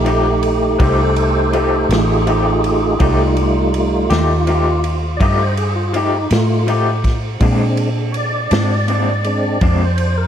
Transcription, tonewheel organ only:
0.00 2.95 A3 soft
0.00 2.95 D#4 medium
0.00 2.95 G4 medium
0.79 1.15 A4 medium
0.79 0.82 B4 medium
0.83 1.17 C5 medium
1.18 1.51 A4 medium
1.18 1.53 C5 medium
1.54 1.88 A4 medium
1.54 1.89 C5 medium
1.92 2.25 F4 medium
1.92 2.27 G#4 medium
2.29 2.62 F4 medium
2.29 2.64 G#4 medium
2.66 2.99 F4 medium
2.66 3.01 G#4 medium
3.00 4.07 G3 medium
3.00 3.36 A3 medium
3.00 4.07 D#4 medium
3.00 3.37 F4 medium
3.40 3.72 A3 medium
3.40 3.74 F4 medium
3.78 4.10 A3 medium
3.78 4.12 F4 medium
4.15 4.84 F4 loud
5.17 5.21 D5 medium
5.21 5.38 D#5 loud
5.39 5.56 C5 medium
5.58 5.75 G#4 medium
5.76 5.93 F4 medium
5.95 6.30 D#4 medium
6.31 6.65 A3 medium
6.31 6.67 F4 medium
7.39 7.89 G#3 medium
7.39 7.89 C4 medium
7.39 7.89 D4 medium
8.12 8.16 C#5 medium
8.17 9.77 D5 medium
9.25 9.58 G#3 soft
9.25 9.59 C4 soft
9.25 9.59 D4 medium
9.82 10.16 C5 medium
10.17 10.27 A#4 medium

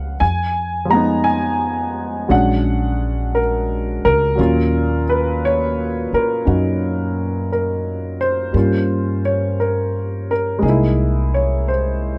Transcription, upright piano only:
0.00 0.19 F3 soft
0.00 0.20 G#3 soft
0.00 0.21 A#3 soft
0.00 0.21 C#4 soft
0.00 0.22 F5 medium
0.00 0.16 F#5 medium
0.20 0.93 G#5 medium
0.85 2.27 F3 soft
0.85 2.27 G#3 soft
0.91 2.31 B3 soft
0.91 1.26 A#5 medium
0.96 2.33 D#4 soft
1.24 2.32 G#5 medium
2.28 4.34 F#3 soft
2.28 4.38 G#3 soft
2.28 4.38 C#4 soft
2.28 4.39 D4 soft
2.28 3.38 F#5 medium
3.35 4.01 A#4 medium
4.05 5.04 A#4 medium
4.35 8.54 A#2 soft
4.35 8.53 F#3 soft
4.35 6.44 C#4 soft
4.41 8.55 F4 medium
5.09 5.41 B4 medium
5.45 6.10 C#5 medium
6.14 7.47 A#4 medium
6.45 8.54 C#4 soft
6.45 8.54 D#4 soft
6.45 8.55 F#4 soft
7.52 8.17 A#4 medium
8.21 9.21 C5 medium
8.52 10.62 G3 soft
8.52 10.60 A#3 soft
8.52 10.64 C#4 soft
8.57 10.65 F4 soft
9.25 9.57 C#5 medium
9.60 10.29 A#4 medium
10.31 10.62 A#4 medium
10.59 12.18 G#3 soft
10.59 12.18 A#3 soft
10.59 12.18 G#4 soft
10.65 12.18 D#4 soft
10.65 12.18 E4 soft
11.34 11.70 C#5 medium
11.68 12.18 C5 medium

